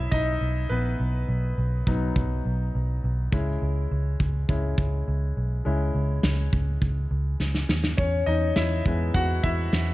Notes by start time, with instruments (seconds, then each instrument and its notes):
Already playing: grand piano F#3 C#4 D#4 E4 C#5 D#5 E5
0.12 picked electric bass B1, grand piano D#4 D#5, kick
0.41 picked electric bass B1
0.69 picked electric bass A#1, grand piano B3 B4
1.00 picked electric bass B1
1.29 picked electric bass B1
1.58 picked electric bass B1
1.87 picked electric bass B1, grand piano F#3 B3 D#4, kick
2.16 picked electric bass B1, kick
2.46 picked electric bass B1
2.75 picked electric bass B1
3.04 picked electric bass B1
3.32 picked electric bass C#2, grand piano G#3 C#4 E4, kick
3.62 picked electric bass C#2
3.91 picked electric bass C#2
4.20 picked electric bass C#2, kick
4.48 picked electric bass C#2, grand piano G#3 C#4 E4, kick
4.78 picked electric bass C#2, kick
5.08 picked electric bass C#2
5.37 picked electric bass B1
5.65 picked electric bass C#2, grand piano G#3 C#4 E4
5.95 picked electric bass C#2
6.23 picked electric bass C#2, snare
6.53 picked electric bass C#2, kick
6.82 picked electric bass C#2, kick
7.11 picked electric bass C#2
7.40 picked electric bass C#2, snare
7.55 snare
7.69 picked electric bass D#2, snare
7.84 snare
7.97 picked electric bass E2, grand piano C#4 C#5, kick
8.26 picked electric bass E2, grand piano D#4 D#5
8.56 picked electric bass E2, grand piano E4 E5, snare
8.86 picked electric bass E2, grand piano G#3 B3 E4, kick
9.14 picked electric bass E2, grand piano F#4 F#5, kick
9.43 picked electric bass E2, grand piano E4 E5, kick
9.73 picked electric bass E2, snare